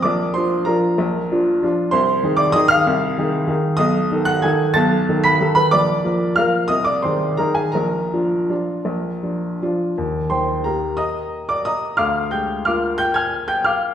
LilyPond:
\new Staff \with { instrumentName = "Grand piano" } { \time 3/4 \key bes \mixolydian \tempo 4 = 184 << { <d'' d'''>4 <c'' c'''>4 <bes' bes''>4~ | <bes' bes''>2 r4 | <c'' c'''>4. <d'' d'''>8 <ees'' ees'''>8 <f'' f'''>8~ | <f'' f'''>2. |
<dis'' dis'''>4. <ges'' ges'''>8 <aes'' aes'''>4 | <a'' a'''>4. <b'' b'''>4 <b' b''>8 | <d'' d'''>2 <f'' f'''>4 | <ees'' ees'''>8 <d'' d'''>8 <c'' c'''>4 <bes' bes''>8 <aes' aes''>8 |
<bes' bes''>2.~ | <bes' bes''>2 r4 | r4 <c'' g'' c'''>4 <bes' g'' bes''>4 | <ees'' bes'' ees'''>4. <d'' d'''>8 <ees'' bes'' ees'''>4 |
<f'' d''' f'''>4 <g'' g'''>4 <f'' d''' f'''>4 | <g'' g'''>8 <aes'' f''' aes'''>4 <g'' g'''>8 <f'' d''' f'''>4 | } \\ { bes,,4 <f d' f'>4 <f d' f'>4 | bes,,4 <f d' f'>4 <f d' f'>4 | c,4 <ees ees' aes'>4 <ees ees' aes'>4 | c,4 <ees ees' aes'>4 <ees ees' aes'>4 |
b,,4 <dis dis' a'>4 <dis dis' a'>4 | b,,4 <dis dis' a'>4 <dis dis' a'>4 | bes,,4 <f bes bes'>4 <f bes bes'>4 | c,4 <ees ees' aes'>4 <ees ees' aes'>4 |
bes,,4 <f d' f'>4 <f d' f'>4 | bes,,4 <f d' f'>4 <f d' f'>4 | ees,4 ees4 <bes g'>4~ | <bes g'>2. |
d,4 aes4 <bes f'>4~ | <bes f'>2. | } >> }